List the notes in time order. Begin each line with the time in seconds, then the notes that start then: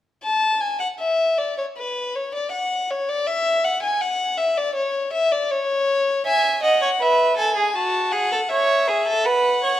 0.23 A5
0.61 G#5
0.80 F#5
0.99 E5
1.38 D5
1.58 C#5
1.77 B4
2.15 C#5
2.35 D5
2.52 F#5
2.91 C#5
3.09 D5
3.27 E5
3.64 F#5
3.83 G#5
4.01 F#5
4.37 E5
4.57 D5
4.75 C#5
5.13 E5
5.32 D5
5.51 C#5
6.26 E5 G#5
6.63 D#5 F#5
6.82 C#5
7.01 B4 E5
7.37 A4 G#5
7.56 G#4
7.75 F#4 A5
8.12 G#4 F#5
8.32 A4
8.49 C#5 E5
8.88 G#4
9.07 A4
9.24 B4 F#5
9.64 C#5